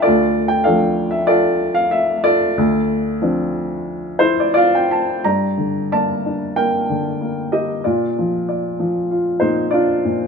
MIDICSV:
0, 0, Header, 1, 2, 480
1, 0, Start_track
1, 0, Key_signature, -1, "minor"
1, 0, Tempo, 624350
1, 32, Time_signature, 4, 2, 24, 8
1, 1472, Tempo, 652174
1, 2912, Tempo, 692841
1, 3872, Key_signature, -2, "minor"
1, 3872, Tempo, 659341
1, 4832, Tempo, 626305
1, 7665, End_track
2, 0, Start_track
2, 0, Title_t, "Upright piano"
2, 0, Program_c, 0, 0
2, 0, Control_c, 0, 64, 127
2, 18, Note_on_c, 0, 74, 81
2, 27, Note_on_c, 0, 69, 51
2, 29, Note_on_c, 0, 65, 58
2, 41, Control_c, 0, 64, 0
2, 55, Note_on_c, 0, 38, 58
2, 154, Control_c, 0, 64, 127
2, 371, Note_on_c, 0, 79, 75
2, 393, Note_off_c, 0, 74, 0
2, 490, Note_off_c, 0, 69, 0
2, 491, Note_on_c, 0, 77, 74
2, 500, Note_on_c, 0, 74, 53
2, 502, Note_on_c, 0, 69, 55
2, 503, Note_off_c, 0, 79, 0
2, 513, Note_on_c, 0, 53, 45
2, 519, Note_on_c, 0, 57, 44
2, 522, Note_on_c, 0, 62, 44
2, 832, Note_off_c, 0, 77, 0
2, 851, Note_on_c, 0, 76, 65
2, 954, Note_off_c, 0, 65, 0
2, 965, Note_off_c, 0, 74, 0
2, 968, Note_off_c, 0, 69, 0
2, 976, Note_on_c, 0, 74, 83
2, 980, Note_on_c, 0, 69, 59
2, 982, Note_off_c, 0, 76, 0
2, 988, Note_on_c, 0, 65, 62
2, 1341, Note_on_c, 0, 77, 78
2, 1355, Note_off_c, 0, 74, 0
2, 1459, Note_off_c, 0, 77, 0
2, 1469, Note_on_c, 0, 76, 71
2, 1698, Note_off_c, 0, 69, 0
2, 1699, Note_off_c, 0, 65, 0
2, 1709, Note_on_c, 0, 69, 56
2, 1709, Note_on_c, 0, 74, 87
2, 1710, Note_on_c, 0, 65, 57
2, 1715, Note_off_c, 0, 76, 0
2, 1925, Note_off_c, 0, 53, 0
2, 1928, Note_off_c, 0, 57, 0
2, 1929, Note_off_c, 0, 62, 0
2, 1933, Note_off_c, 0, 38, 0
2, 1959, Note_on_c, 0, 38, 70
2, 1962, Control_c, 0, 64, 0
2, 2092, Control_c, 0, 64, 127
2, 2429, Note_on_c, 0, 53, 46
2, 2434, Note_on_c, 0, 60, 47
2, 2436, Note_on_c, 0, 62, 49
2, 3133, Note_on_c, 0, 72, 81
2, 3140, Note_on_c, 0, 64, 61
2, 3267, Note_off_c, 0, 74, 0
2, 3278, Note_on_c, 0, 74, 64
2, 3365, Note_off_c, 0, 74, 0
2, 3366, Note_off_c, 0, 69, 0
2, 3367, Note_off_c, 0, 65, 0
2, 3373, Note_off_c, 0, 64, 0
2, 3375, Note_on_c, 0, 74, 87
2, 3380, Note_on_c, 0, 65, 65
2, 3395, Note_off_c, 0, 72, 0
2, 3399, Note_on_c, 0, 77, 68
2, 3513, Note_off_c, 0, 77, 0
2, 3521, Note_on_c, 0, 79, 65
2, 3633, Note_off_c, 0, 79, 0
2, 3634, Note_on_c, 0, 81, 70
2, 3838, Note_off_c, 0, 65, 0
2, 3842, Note_off_c, 0, 53, 0
2, 3845, Note_off_c, 0, 60, 0
2, 3846, Note_off_c, 0, 62, 0
2, 3848, Note_off_c, 0, 38, 0
2, 3852, Note_off_c, 0, 81, 0
2, 3857, Note_off_c, 0, 74, 0
2, 3863, Note_on_c, 0, 82, 71
2, 3867, Note_on_c, 0, 74, 50
2, 3869, Note_on_c, 0, 43, 46
2, 3880, Control_c, 0, 64, 0
2, 4001, Control_c, 0, 64, 127
2, 4104, Note_on_c, 0, 50, 38
2, 4324, Note_off_c, 0, 74, 0
2, 4356, Note_on_c, 0, 74, 55
2, 4358, Note_on_c, 0, 81, 73
2, 4363, Note_on_c, 0, 58, 44
2, 4365, Note_off_c, 0, 82, 0
2, 4600, Note_on_c, 0, 62, 39
2, 4803, Note_off_c, 0, 74, 0
2, 4822, Note_on_c, 0, 70, 52
2, 4823, Note_on_c, 0, 79, 76
2, 4825, Note_off_c, 0, 58, 0
2, 4837, Note_on_c, 0, 58, 43
2, 4848, Note_off_c, 0, 81, 0
2, 5040, Note_off_c, 0, 50, 0
2, 5076, Note_on_c, 0, 50, 46
2, 5307, Note_off_c, 0, 58, 0
2, 5319, Note_on_c, 0, 58, 46
2, 5520, Note_off_c, 0, 70, 0
2, 5528, Note_off_c, 0, 62, 0
2, 5557, Note_on_c, 0, 75, 66
2, 5562, Note_on_c, 0, 67, 49
2, 5573, Note_off_c, 0, 79, 0
2, 5769, Note_off_c, 0, 43, 0
2, 5781, Note_off_c, 0, 50, 0
2, 5787, Note_off_c, 0, 67, 0
2, 5789, Note_off_c, 0, 58, 0
2, 5803, Note_on_c, 0, 74, 56
2, 5807, Note_on_c, 0, 65, 46
2, 5809, Note_off_c, 0, 75, 0
2, 5810, Control_c, 0, 64, 0
2, 5815, Note_on_c, 0, 46, 57
2, 5937, Control_c, 0, 64, 127
2, 6067, Note_on_c, 0, 53, 46
2, 6285, Note_off_c, 0, 74, 0
2, 6297, Note_on_c, 0, 74, 46
2, 6522, Note_off_c, 0, 53, 0
2, 6534, Note_on_c, 0, 53, 52
2, 6735, Note_off_c, 0, 65, 0
2, 6772, Note_on_c, 0, 65, 44
2, 6995, Note_off_c, 0, 46, 0
2, 6995, Note_on_c, 0, 72, 61
2, 7006, Note_on_c, 0, 46, 51
2, 7006, Note_on_c, 0, 63, 56
2, 7211, Note_off_c, 0, 74, 0
2, 7223, Note_off_c, 0, 63, 0
2, 7231, Note_on_c, 0, 74, 67
2, 7238, Note_off_c, 0, 65, 0
2, 7240, Note_off_c, 0, 72, 0
2, 7248, Note_on_c, 0, 62, 52
2, 7250, Note_on_c, 0, 65, 62
2, 7448, Note_off_c, 0, 53, 0
2, 7484, Note_off_c, 0, 46, 0
2, 7496, Note_on_c, 0, 46, 50
2, 7665, Note_off_c, 0, 46, 0
2, 7665, Note_off_c, 0, 62, 0
2, 7665, Note_off_c, 0, 65, 0
2, 7665, Note_off_c, 0, 74, 0
2, 7665, End_track
0, 0, End_of_file